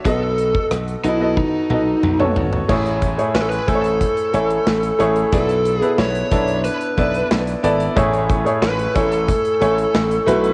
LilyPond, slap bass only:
\new Staff \with { instrumentName = "Slap bass" } { \clef bass \time 4/4 \key a \lydian \tempo 4 = 91 b,,4 b,,8 b,,8. r16 b,,8 b,,8 gis,,8 | a,,4 a,,8 a,,8. r16 a,,8 a,,8 a,,8 | b,,4 b,,8 b,,8. r16 b,,8 b,,8 gis,,8 | a,,4 a,,8 a,,8. r16 a,,8 a,,8 b,,8 | }